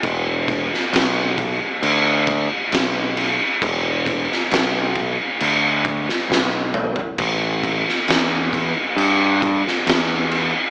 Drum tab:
CC |x-x-x-x-x-x-x-x-|x-x-x-x-x-x-----|x-x-x-x-x-x-x-x-|
SD |---oo-------o---|---oo------oo---|---oo------oo---|
T2 |----------------|--------------o-|----------------|
FT |----------------|---------------o|----------------|
BD |o-o---o---o-----|o-o---o---o-----|o-o---o---o-----|